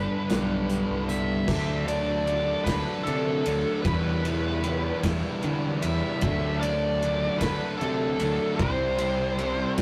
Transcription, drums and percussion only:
0.30 snare, closed hi-hat
0.70 closed hi-hat
1.09 closed hi-hat
1.48 kick, crash
1.88 ride
2.27 ride
2.66 kick, snare, ride
3.07 ride
3.46 ride
3.85 kick, ride
4.25 ride
4.64 ride
5.03 kick, snare, ride
5.43 ride
5.82 ride
6.21 kick, ride
6.63 ride
7.02 ride
7.41 kick, snare, ride
7.81 ride
8.20 ride
8.59 kick, ride
8.98 ride
9.39 ride
9.78 kick, snare, ride

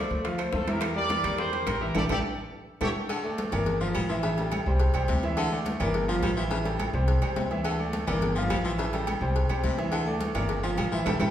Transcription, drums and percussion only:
0.11 high bongo, high conga
0.25 high bongo, high conga, high timbale
0.38 high bongo, high conga, high timbale, claves
0.53 high bongo, low bongo, high conga
0.67 high conga, high timbale
0.81 high bongo, high conga, high timbale, claves
0.96 high conga
1.09 high bongo, high conga, high timbale
1.24 high conga, low conga, high timbale, claves
1.38 high bongo, high conga
1.53 high conga, high timbale
1.67 high bongo, low bongo, high conga, high timbale, claves
1.81 high conga
1.95 low bongo, high conga, high timbale, claves
2.09 low bongo, high conga, high timbale, claves
2.81 low bongo, high conga, high timbale, claves
3.09 cowbell, high conga, low agogo, claves
3.24 high conga
3.38 cowbell, high conga, low agogo
3.52 cowbell, high conga, low conga, low agogo, claves
3.66 cowbell, high conga, low conga
3.81 high conga, low agogo
3.95 cowbell, high conga, low agogo, claves
4.09 high conga
4.23 cowbell, high conga, low agogo
4.38 high conga, low agogo
4.52 cowbell, high conga, low agogo, claves
4.67 high conga
4.80 cowbell, high conga, low agogo
4.94 cowbell, high conga, low agogo, claves
5.08 cowbell, high conga
5.23 high conga, low agogo
5.37 cowbell, high conga, low agogo, claves
5.52 high conga
5.66 cowbell, high conga, low agogo
5.80 cowbell, high conga, low conga, low agogo, claves
5.94 cowbell, high conga
6.09 high conga, low agogo
6.23 cowbell, high conga, low timbale, low agogo, claves
6.37 high conga
6.51 cowbell, high conga, low agogo
6.65 high conga, low agogo
6.79 cowbell, high conga, low agogo, claves
6.94 high conga
7.08 cowbell, high conga, low agogo
7.22 cowbell, high conga, low agogo, claves
7.36 cowbell, high conga, low timbale
7.51 high conga, low agogo
7.64 cowbell, high conga, low agogo, claves
7.79 high conga
7.93 cowbell, high conga, low agogo
8.08 cowbell, high conga, low conga, low agogo, claves
8.22 cowbell, high conga, low conga
8.36 low agogo
8.50 cowbell, high conga, low timbale, low agogo, claves
8.65 high conga
8.78 cowbell, high conga, low agogo
8.93 high conga, low agogo
9.07 cowbell, high conga, low agogo, claves
9.22 high conga
9.36 cowbell, low agogo
9.49 cowbell, high conga, low agogo, claves
9.64 cowbell, high conga
9.78 high conga, low agogo
9.92 cowbell, high conga, low agogo, claves
10.07 high conga
10.21 cowbell, high conga, low agogo
10.35 cowbell, high conga, low conga, low agogo, claves
10.49 cowbell, high conga, low conga
10.63 high conga, low agogo
10.77 cowbell, high conga, low agogo, claves
10.92 high conga
11.06 cowbell, high conga, high timbale, claves
11.20 cowbell, high conga, high timbale, claves

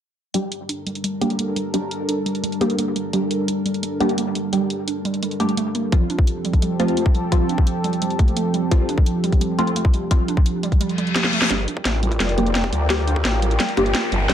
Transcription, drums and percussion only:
0.34 closed hi-hat
0.52 closed hi-hat
0.69 closed hi-hat
0.87 closed hi-hat
0.95 closed hi-hat
1.04 closed hi-hat
1.22 closed hi-hat
1.30 closed hi-hat
1.39 closed hi-hat
1.56 closed hi-hat
1.74 closed hi-hat
1.91 closed hi-hat
2.09 closed hi-hat
2.26 closed hi-hat
2.35 closed hi-hat
2.44 closed hi-hat
2.52 closed hi-hat
2.61 closed hi-hat
2.70 closed hi-hat
2.79 closed hi-hat
2.96 closed hi-hat
3.13 closed hi-hat
3.31 closed hi-hat
3.48 closed hi-hat
3.66 closed hi-hat
3.74 closed hi-hat
3.83 closed hi-hat
4.01 closed hi-hat
4.09 closed hi-hat
4.18 closed hi-hat
4.35 closed hi-hat
4.53 closed hi-hat
4.70 closed hi-hat
4.88 closed hi-hat
5.05 closed hi-hat
5.14 closed hi-hat
5.23 closed hi-hat
5.31 closed hi-hat
5.40 closed hi-hat
5.49 closed hi-hat
5.57 closed hi-hat
5.75 closed hi-hat
5.92 kick, closed hi-hat
6.10 closed hi-hat
6.19 kick
6.27 closed hi-hat
6.45 closed hi-hat
6.53 kick, closed hi-hat
6.62 closed hi-hat
6.80 closed hi-hat
6.88 closed hi-hat
6.97 closed hi-hat
7.06 kick
7.15 closed hi-hat
7.32 kick, closed hi-hat
7.49 closed hi-hat
7.58 kick
7.67 closed hi-hat
7.84 closed hi-hat
7.93 closed hi-hat
8.02 closed hi-hat
8.10 closed hi-hat
8.19 kick, closed hi-hat
8.28 closed hi-hat
8.37 closed hi-hat
8.54 closed hi-hat
8.71 kick, closed hi-hat
8.89 closed hi-hat
8.98 kick
9.06 closed hi-hat
9.24 closed hi-hat
9.32 kick, closed hi-hat
9.41 closed hi-hat
9.59 closed hi-hat
9.67 closed hi-hat
9.76 closed hi-hat
9.85 kick
9.94 closed hi-hat
10.11 kick, closed hi-hat
10.28 closed hi-hat
10.37 kick
10.46 closed hi-hat
10.63 closed hi-hat
10.72 kick, closed hi-hat
10.81 closed hi-hat
10.89 closed hi-hat
10.98 closed hi-hat
11.07 closed hi-hat
11.16 snare, closed hi-hat
11.24 snare
11.33 closed hi-hat
11.42 snare
11.50 kick, snare, closed hi-hat
11.68 closed hi-hat
11.77 kick
11.85 snare, closed hi-hat
12.03 closed hi-hat
12.12 kick, closed hi-hat
12.20 snare, closed hi-hat
12.29 closed hi-hat
12.38 closed hi-hat
12.46 closed hi-hat
12.55 snare, closed hi-hat
12.64 kick
12.73 closed hi-hat
12.90 kick, snare, closed hi-hat
13.08 closed hi-hat
13.16 kick
13.25 snare, closed hi-hat
13.42 closed hi-hat
13.51 closed hi-hat
13.60 snare, closed hi-hat
13.69 closed hi-hat
13.77 kick, closed hi-hat
13.86 closed hi-hat
13.95 snare, closed hi-hat
14.12 closed hi-hat
14.29 kick, snare, closed hi-hat

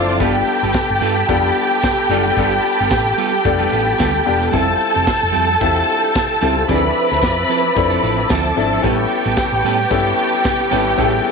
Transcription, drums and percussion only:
0.09 closed hi-hat
0.20 kick, closed hi-hat
0.48 open hi-hat
0.64 closed hi-hat
0.73 kick, snare, closed hi-hat, tambourine
1.02 open hi-hat
1.17 closed hi-hat
1.29 kick, closed hi-hat
1.57 open hi-hat
1.72 closed hi-hat
1.81 kick, snare, closed hi-hat, tambourine
2.10 snare, open hi-hat
2.26 closed hi-hat
2.37 kick, closed hi-hat
2.64 open hi-hat
2.80 closed hi-hat
2.90 kick, snare, closed hi-hat, tambourine
3.19 open hi-hat
3.34 closed hi-hat
3.45 kick, closed hi-hat
3.73 open hi-hat
3.88 closed hi-hat
3.98 kick, snare, closed hi-hat, tambourine
4.27 snare, open hi-hat
4.42 closed hi-hat
4.53 kick, closed hi-hat
4.80 open hi-hat
4.97 closed hi-hat
5.07 kick, snare, closed hi-hat, tambourine
5.35 open hi-hat
5.49 closed hi-hat
5.61 kick, closed hi-hat
5.87 open hi-hat
6.03 closed hi-hat
6.14 kick, snare, closed hi-hat, tambourine
6.42 snare, open hi-hat
6.58 closed hi-hat
6.69 kick, closed hi-hat
6.96 open hi-hat
7.12 closed hi-hat
7.22 kick, snare, closed hi-hat, tambourine
7.51 open hi-hat
7.65 closed hi-hat
7.77 kick, closed hi-hat
8.04 open hi-hat
8.18 closed hi-hat
8.29 kick, snare, closed hi-hat, tambourine
8.57 snare, open hi-hat
8.72 closed hi-hat
8.84 kick, closed hi-hat
9.11 open hi-hat
9.26 closed hi-hat
9.37 kick, snare, closed hi-hat, tambourine
9.65 open hi-hat
9.79 closed hi-hat
9.91 kick, closed hi-hat
10.18 open hi-hat
10.33 closed hi-hat
10.44 kick, snare, closed hi-hat, tambourine
10.73 open hi-hat
10.87 closed hi-hat
10.99 kick, closed hi-hat
11.25 open hi-hat

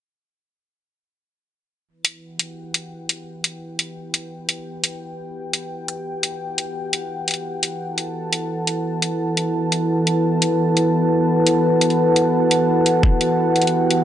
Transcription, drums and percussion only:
2.05 closed hi-hat
2.39 closed hi-hat
2.74 closed hi-hat
3.09 closed hi-hat
3.44 closed hi-hat
3.79 closed hi-hat
4.14 closed hi-hat
4.49 closed hi-hat
4.84 closed hi-hat
5.53 closed hi-hat
5.88 closed hi-hat
6.23 closed hi-hat
6.58 closed hi-hat
6.93 closed hi-hat
7.28 closed hi-hat
7.31 closed hi-hat
7.34 closed hi-hat
7.63 closed hi-hat
7.98 closed hi-hat
8.33 closed hi-hat
8.67 closed hi-hat
9.02 closed hi-hat
9.37 closed hi-hat
9.72 closed hi-hat
10.07 closed hi-hat
10.42 closed hi-hat
10.77 closed hi-hat
11.47 closed hi-hat
11.81 closed hi-hat
11.90 closed hi-hat
12.16 closed hi-hat
12.51 closed hi-hat
12.86 closed hi-hat
13.03 kick
13.21 closed hi-hat
13.56 closed hi-hat
13.62 closed hi-hat
13.67 closed hi-hat
13.91 closed hi-hat

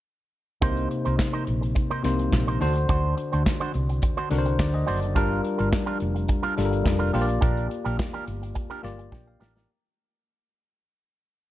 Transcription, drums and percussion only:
0.62 kick, closed hi-hat
0.77 closed hi-hat
0.91 closed hi-hat
1.05 closed hi-hat
1.19 kick, snare, clap
1.47 closed hi-hat
1.63 closed hi-hat
1.75 kick, closed hi-hat
2.04 snare, closed hi-hat
2.19 closed hi-hat
2.33 kick, snare, clap
2.49 closed hi-hat
2.61 open hi-hat
2.75 closed hi-hat
2.89 kick, closed hi-hat
3.18 closed hi-hat
3.33 closed hi-hat
3.46 kick, snare, clap
3.74 closed hi-hat
3.89 closed hi-hat
4.02 kick, closed hi-hat
4.17 closed hi-hat
4.31 snare, closed hi-hat
4.46 closed hi-hat
4.59 kick, snare, clap
4.75 closed hi-hat
4.88 open hi-hat
5.03 closed hi-hat
5.16 kick, closed hi-hat
5.44 closed hi-hat
5.59 closed hi-hat
5.73 kick, snare, clap
5.87 closed hi-hat
6.00 closed hi-hat
6.16 closed hi-hat
6.28 kick, closed hi-hat
6.44 closed hi-hat
6.58 snare, closed hi-hat
6.73 closed hi-hat
6.86 kick, snare, clap
7.01 closed hi-hat
7.14 open hi-hat
7.29 closed hi-hat
7.42 kick, closed hi-hat
7.57 closed hi-hat
7.71 closed hi-hat
7.86 closed hi-hat
7.99 kick, snare, clap
8.14 closed hi-hat
8.27 closed hi-hat
8.43 closed hi-hat
8.55 kick, closed hi-hat
8.84 snare, closed hi-hat
8.99 closed hi-hat
9.12 kick, snare
9.42 snare
9.57 snare

